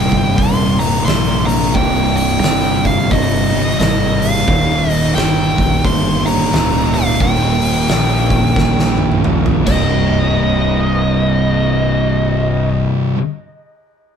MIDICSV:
0, 0, Header, 1, 5, 480
1, 0, Start_track
1, 0, Key_signature, -3, "minor"
1, 0, Tempo, 681818
1, 1226, Time_signature, 4, 2, 24, 8
1, 9972, End_track
2, 0, Start_track
2, 0, Title_t, "Lead electric guitar"
2, 0, Program_c, 0, 29
2, 0, Note_on_c, 0, 79, 93
2, 261, Note_on_c, 0, 84, 111
2, 284, Note_off_c, 0, 79, 0
2, 558, Note_off_c, 0, 84, 0
2, 561, Note_on_c, 0, 82, 86
2, 739, Note_off_c, 0, 82, 0
2, 742, Note_on_c, 0, 84, 101
2, 1027, Note_off_c, 0, 84, 0
2, 1030, Note_on_c, 0, 82, 111
2, 1226, Note_off_c, 0, 82, 0
2, 1226, Note_on_c, 0, 79, 102
2, 1517, Note_off_c, 0, 79, 0
2, 1526, Note_on_c, 0, 79, 101
2, 2014, Note_off_c, 0, 79, 0
2, 2017, Note_on_c, 0, 77, 93
2, 2191, Note_on_c, 0, 75, 93
2, 2200, Note_off_c, 0, 77, 0
2, 2662, Note_off_c, 0, 75, 0
2, 2670, Note_on_c, 0, 75, 94
2, 2967, Note_on_c, 0, 77, 98
2, 2976, Note_off_c, 0, 75, 0
2, 3446, Note_off_c, 0, 77, 0
2, 3446, Note_on_c, 0, 75, 98
2, 3623, Note_off_c, 0, 75, 0
2, 3626, Note_on_c, 0, 79, 93
2, 4121, Note_on_c, 0, 84, 96
2, 4122, Note_off_c, 0, 79, 0
2, 4406, Note_off_c, 0, 84, 0
2, 4409, Note_on_c, 0, 82, 97
2, 4889, Note_on_c, 0, 77, 88
2, 4902, Note_off_c, 0, 82, 0
2, 5076, Note_off_c, 0, 77, 0
2, 5082, Note_on_c, 0, 79, 92
2, 6486, Note_off_c, 0, 79, 0
2, 6803, Note_on_c, 0, 75, 99
2, 9038, Note_off_c, 0, 75, 0
2, 9972, End_track
3, 0, Start_track
3, 0, Title_t, "Distorted electric guitar"
3, 0, Program_c, 1, 30
3, 0, Note_on_c, 1, 36, 98
3, 0, Note_on_c, 1, 43, 97
3, 0, Note_on_c, 1, 48, 105
3, 541, Note_off_c, 1, 36, 0
3, 544, Note_off_c, 1, 48, 0
3, 547, Note_off_c, 1, 43, 0
3, 552, Note_on_c, 1, 48, 95
3, 564, Note_on_c, 1, 43, 80
3, 573, Note_on_c, 1, 36, 77
3, 729, Note_off_c, 1, 48, 0
3, 735, Note_off_c, 1, 36, 0
3, 736, Note_off_c, 1, 43, 0
3, 744, Note_on_c, 1, 36, 81
3, 752, Note_on_c, 1, 43, 83
3, 762, Note_on_c, 1, 48, 79
3, 1213, Note_off_c, 1, 36, 0
3, 1219, Note_off_c, 1, 43, 0
3, 1221, Note_on_c, 1, 36, 84
3, 1224, Note_off_c, 1, 48, 0
3, 1232, Note_on_c, 1, 43, 90
3, 1240, Note_on_c, 1, 48, 98
3, 2465, Note_off_c, 1, 36, 0
3, 2471, Note_off_c, 1, 43, 0
3, 2472, Note_off_c, 1, 48, 0
3, 2481, Note_on_c, 1, 48, 87
3, 2492, Note_on_c, 1, 43, 77
3, 2501, Note_on_c, 1, 36, 71
3, 2656, Note_off_c, 1, 48, 0
3, 2661, Note_off_c, 1, 43, 0
3, 2663, Note_off_c, 1, 36, 0
3, 2672, Note_on_c, 1, 36, 81
3, 2678, Note_on_c, 1, 43, 89
3, 2688, Note_on_c, 1, 48, 83
3, 3140, Note_off_c, 1, 36, 0
3, 3143, Note_off_c, 1, 43, 0
3, 3148, Note_off_c, 1, 48, 0
3, 3148, Note_on_c, 1, 39, 96
3, 3157, Note_on_c, 1, 46, 102
3, 3165, Note_on_c, 1, 51, 102
3, 4388, Note_off_c, 1, 39, 0
3, 4391, Note_off_c, 1, 51, 0
3, 4393, Note_off_c, 1, 46, 0
3, 4399, Note_on_c, 1, 51, 86
3, 4412, Note_on_c, 1, 46, 73
3, 4420, Note_on_c, 1, 39, 70
3, 4575, Note_off_c, 1, 51, 0
3, 4580, Note_off_c, 1, 39, 0
3, 4581, Note_off_c, 1, 46, 0
3, 4588, Note_on_c, 1, 39, 81
3, 4599, Note_on_c, 1, 46, 97
3, 4605, Note_on_c, 1, 51, 85
3, 5058, Note_off_c, 1, 39, 0
3, 5063, Note_off_c, 1, 46, 0
3, 5065, Note_on_c, 1, 39, 94
3, 5066, Note_off_c, 1, 51, 0
3, 5079, Note_on_c, 1, 46, 100
3, 5086, Note_on_c, 1, 51, 101
3, 6305, Note_off_c, 1, 39, 0
3, 6306, Note_off_c, 1, 51, 0
3, 6312, Note_off_c, 1, 46, 0
3, 6315, Note_on_c, 1, 51, 101
3, 6324, Note_on_c, 1, 46, 82
3, 6333, Note_on_c, 1, 39, 75
3, 6491, Note_off_c, 1, 39, 0
3, 6492, Note_off_c, 1, 51, 0
3, 6496, Note_off_c, 1, 46, 0
3, 6500, Note_on_c, 1, 39, 76
3, 6510, Note_on_c, 1, 46, 84
3, 6518, Note_on_c, 1, 51, 91
3, 6786, Note_off_c, 1, 39, 0
3, 6789, Note_on_c, 1, 36, 92
3, 6803, Note_off_c, 1, 46, 0
3, 6806, Note_on_c, 1, 43, 94
3, 6810, Note_off_c, 1, 51, 0
3, 6816, Note_on_c, 1, 48, 99
3, 9253, Note_off_c, 1, 36, 0
3, 9270, Note_off_c, 1, 43, 0
3, 9280, Note_off_c, 1, 48, 0
3, 9972, End_track
4, 0, Start_track
4, 0, Title_t, "Fingered electric bass"
4, 0, Program_c, 2, 33
4, 85, Note_on_c, 2, 31, 93
4, 249, Note_off_c, 2, 31, 0
4, 269, Note_on_c, 2, 27, 83
4, 719, Note_off_c, 2, 27, 0
4, 746, Note_on_c, 2, 34, 97
4, 1199, Note_off_c, 2, 34, 0
4, 1233, Note_on_c, 2, 24, 94
4, 1683, Note_off_c, 2, 24, 0
4, 1709, Note_on_c, 2, 31, 93
4, 2161, Note_off_c, 2, 31, 0
4, 2190, Note_on_c, 2, 31, 88
4, 2642, Note_off_c, 2, 31, 0
4, 2668, Note_on_c, 2, 32, 96
4, 3121, Note_off_c, 2, 32, 0
4, 3150, Note_on_c, 2, 27, 98
4, 3602, Note_off_c, 2, 27, 0
4, 3630, Note_on_c, 2, 31, 94
4, 3899, Note_off_c, 2, 31, 0
4, 3929, Note_on_c, 2, 34, 87
4, 4094, Note_off_c, 2, 34, 0
4, 4114, Note_on_c, 2, 31, 88
4, 4563, Note_off_c, 2, 31, 0
4, 4592, Note_on_c, 2, 25, 87
4, 5042, Note_off_c, 2, 25, 0
4, 5071, Note_on_c, 2, 27, 92
4, 5522, Note_off_c, 2, 27, 0
4, 5551, Note_on_c, 2, 34, 94
4, 6001, Note_off_c, 2, 34, 0
4, 6029, Note_on_c, 2, 34, 93
4, 6480, Note_off_c, 2, 34, 0
4, 6503, Note_on_c, 2, 34, 82
4, 6773, Note_off_c, 2, 34, 0
4, 6805, Note_on_c, 2, 24, 100
4, 9040, Note_off_c, 2, 24, 0
4, 9972, End_track
5, 0, Start_track
5, 0, Title_t, "Drums"
5, 84, Note_on_c, 9, 36, 92
5, 86, Note_on_c, 9, 46, 71
5, 155, Note_off_c, 9, 36, 0
5, 157, Note_off_c, 9, 46, 0
5, 268, Note_on_c, 9, 36, 124
5, 269, Note_on_c, 9, 46, 91
5, 339, Note_off_c, 9, 36, 0
5, 339, Note_off_c, 9, 46, 0
5, 566, Note_on_c, 9, 46, 66
5, 637, Note_off_c, 9, 46, 0
5, 748, Note_on_c, 9, 46, 82
5, 761, Note_on_c, 9, 38, 118
5, 819, Note_off_c, 9, 46, 0
5, 831, Note_off_c, 9, 38, 0
5, 1044, Note_on_c, 9, 46, 65
5, 1115, Note_off_c, 9, 46, 0
5, 1231, Note_on_c, 9, 36, 116
5, 1231, Note_on_c, 9, 46, 83
5, 1302, Note_off_c, 9, 36, 0
5, 1302, Note_off_c, 9, 46, 0
5, 1526, Note_on_c, 9, 46, 64
5, 1596, Note_off_c, 9, 46, 0
5, 1707, Note_on_c, 9, 46, 88
5, 1720, Note_on_c, 9, 38, 117
5, 1778, Note_off_c, 9, 46, 0
5, 1790, Note_off_c, 9, 38, 0
5, 2005, Note_on_c, 9, 46, 61
5, 2007, Note_on_c, 9, 36, 87
5, 2076, Note_off_c, 9, 46, 0
5, 2078, Note_off_c, 9, 36, 0
5, 2190, Note_on_c, 9, 36, 121
5, 2191, Note_on_c, 9, 46, 90
5, 2261, Note_off_c, 9, 36, 0
5, 2261, Note_off_c, 9, 46, 0
5, 2487, Note_on_c, 9, 46, 70
5, 2558, Note_off_c, 9, 46, 0
5, 2671, Note_on_c, 9, 46, 87
5, 2684, Note_on_c, 9, 38, 113
5, 2742, Note_off_c, 9, 46, 0
5, 2754, Note_off_c, 9, 38, 0
5, 2969, Note_on_c, 9, 46, 68
5, 3040, Note_off_c, 9, 46, 0
5, 3152, Note_on_c, 9, 46, 85
5, 3153, Note_on_c, 9, 36, 127
5, 3223, Note_off_c, 9, 36, 0
5, 3223, Note_off_c, 9, 46, 0
5, 3451, Note_on_c, 9, 46, 68
5, 3521, Note_off_c, 9, 46, 0
5, 3634, Note_on_c, 9, 46, 93
5, 3647, Note_on_c, 9, 38, 118
5, 3705, Note_off_c, 9, 46, 0
5, 3717, Note_off_c, 9, 38, 0
5, 3931, Note_on_c, 9, 36, 90
5, 3932, Note_on_c, 9, 46, 70
5, 4001, Note_off_c, 9, 36, 0
5, 4002, Note_off_c, 9, 46, 0
5, 4115, Note_on_c, 9, 36, 122
5, 4117, Note_on_c, 9, 46, 94
5, 4185, Note_off_c, 9, 36, 0
5, 4188, Note_off_c, 9, 46, 0
5, 4412, Note_on_c, 9, 46, 69
5, 4482, Note_off_c, 9, 46, 0
5, 4592, Note_on_c, 9, 46, 92
5, 4604, Note_on_c, 9, 38, 108
5, 4662, Note_off_c, 9, 46, 0
5, 4675, Note_off_c, 9, 38, 0
5, 4885, Note_on_c, 9, 46, 71
5, 4955, Note_off_c, 9, 46, 0
5, 5069, Note_on_c, 9, 46, 93
5, 5072, Note_on_c, 9, 36, 117
5, 5140, Note_off_c, 9, 46, 0
5, 5142, Note_off_c, 9, 36, 0
5, 5361, Note_on_c, 9, 46, 62
5, 5431, Note_off_c, 9, 46, 0
5, 5546, Note_on_c, 9, 46, 87
5, 5559, Note_on_c, 9, 38, 118
5, 5617, Note_off_c, 9, 46, 0
5, 5629, Note_off_c, 9, 38, 0
5, 5842, Note_on_c, 9, 46, 58
5, 5846, Note_on_c, 9, 36, 88
5, 5912, Note_off_c, 9, 46, 0
5, 5916, Note_off_c, 9, 36, 0
5, 6028, Note_on_c, 9, 36, 120
5, 6039, Note_on_c, 9, 38, 73
5, 6099, Note_off_c, 9, 36, 0
5, 6110, Note_off_c, 9, 38, 0
5, 6188, Note_on_c, 9, 38, 67
5, 6259, Note_off_c, 9, 38, 0
5, 6320, Note_on_c, 9, 48, 82
5, 6391, Note_off_c, 9, 48, 0
5, 6417, Note_on_c, 9, 48, 77
5, 6488, Note_off_c, 9, 48, 0
5, 6508, Note_on_c, 9, 47, 92
5, 6578, Note_off_c, 9, 47, 0
5, 6659, Note_on_c, 9, 45, 97
5, 6729, Note_off_c, 9, 45, 0
5, 6804, Note_on_c, 9, 49, 89
5, 6805, Note_on_c, 9, 36, 107
5, 6875, Note_off_c, 9, 49, 0
5, 6876, Note_off_c, 9, 36, 0
5, 9972, End_track
0, 0, End_of_file